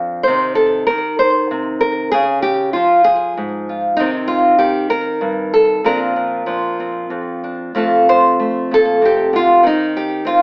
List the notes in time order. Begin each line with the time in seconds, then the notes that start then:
Already playing: F2 F3 D4
0.23 C5
0.27 C3 D#3 D#4 G4
0.55 A4
0.87 D#3 A#4
1.19 C5
1.51 C3
1.81 A#4
2.12 C#3 G#4
2.42 G4
2.73 F3 F4
3.04 G#4
3.37 G#2
3.69 F4
3.97 C3 D#3 C4 D#4
4.28 F4
4.59 D#3 G4
4.90 A#4
5.21 G2
5.54 A4
5.84 A#2 F3 C4 D4 A#4
6.16 D4
6.46 F3 D4
6.80 C4
7.10 F2
7.44 D4
7.75 F2 A3 C4 F4 A4
8.09 C5
8.39 A3
8.71 A#2 A4
9.02 C3 G4
9.33 D3 F4
9.63 D#3 C4 D#4
9.97 G4
10.25 C4 F4